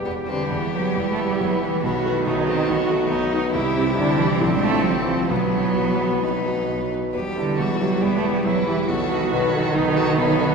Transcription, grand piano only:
\new Staff \with { instrumentName = "Grand piano" } { \time 4/4 \key e \minor \tempo 4 = 138 <e,, e,>8 <g g' b'>8 <e,, e,>8 <g g' b'>8 <e,, e,>8 <g g' b'>8 <e,, e,>8 <g g' b'>8 | <b,, b,>8 <a fis' b'>8 <b,, b,>8 <a fis' b'>8 <b,, b,>8 <a fis' b'>8 <b,, b,>8 <a fis' b'>8 | <c, c>8 <c' e' g'>8 <c, c>8 <c' e' g'>8 <a,, a,>8 <c' f'>8 <a,, a,>8 <c' f'>8 | <b,, b,>8 <b e' fis'>8 <b,, b,>8 <b e' fis'>8 <b,, b,>8 <b dis' fis'>8 <b,, b,>8 <b dis' fis'>8 |
<e,, e,>8 <b e' g'>8 <e,, e,>8 <b e' g'>8 <e,, e,>8 <b e' g'>8 <e,, e,>8 <b e' g'>8 | <b,, b,>8 <b fis' a'>8 <b,, b,>8 <b fis' a'>8 <b,, b,>8 <b fis' a'>8 <b,, b,>8 <b fis' a'>8 | }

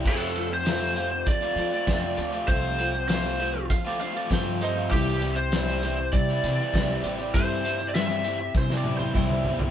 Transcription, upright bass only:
\new Staff \with { instrumentName = "Upright bass" } { \clef bass \time 4/4 \key f \major \tempo 4 = 99 f,2 f8 f16 r16 f,8 d,8 | c,2 f4 g,4 | c,2 c8 c16 r16 c,8 a,,8 | g,2 c4 c,4 | }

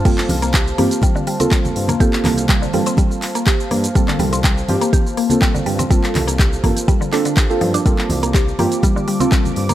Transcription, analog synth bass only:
\new Staff \with { instrumentName = "Analog synth bass" } { \clef bass \time 4/4 \key g \minor \tempo 4 = 123 g,,8 c,4 g,8 r4. g,8 | g,,8 c,4 g,8 r4. g,8 | g,,8 c,4 g,8 r4. g,8 | g,,8 c,4 g,8 r4. g,8 |
g,,8 c,4 g,8 r4. g,8 | }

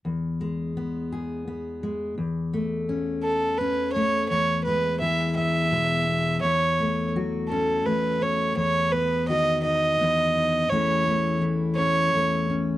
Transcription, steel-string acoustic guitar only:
\new Staff \with { instrumentName = "Steel-string acoustic guitar" } { \time 6/8 \key e \major \tempo 4. = 56 << { r8 gis8 b8 gis'8 b8 gis8 | r8 a8 cis'4 cis'8 a8 | r8 gis8 gis'8 b8 gis8 b8 | r8 a8 fis'8 cis'8 a8 cis'8 |
r8 b8 fis'8 dis'8 b8 dis'8 | <e a cis' e'>8 a8 e'8 cis'8 a8 cis'8 | } \\ { e,2. | e,2. | e,4 e4 b,4 | e,4 fis4 e,4 |
e,4 dis4 e,4 | e,4 e4 e,4 | } >> }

